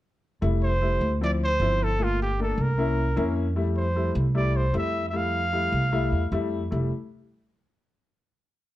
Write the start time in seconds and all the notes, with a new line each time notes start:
0.41 F1 G3 A3 E4
0.63 C5
0.82 G3 A3 E4
1.01 D2
1.21 F3 C4 E4 D5
1.44 C5
1.60 G1 F3 C4 E4
1.83 A4
1.99 A3 A#3 F4
2.03 F4
2.22 G4
2.39 A3 A#3 D4 A4
2.58 C2
2.62 A#4
2.78 A#3 C#4 E4
3.16 F2 A#3 C#4 E4
3.56 G3 A3 E4
3.77 C5
3.95 G3 A3 E4
4.15 C2
4.35 G3 A3 E4 D5
4.56 C5
4.73 F2 G3 A3 E4 E5
5.09 G3 E5
5.13 A3 E4 F5
5.53 G3 A3 E4
5.72 C2
5.92 G3 A3 E4
6.12 E2
6.32 F2 G3 A3 E4
6.71 F1 G3 A3 E4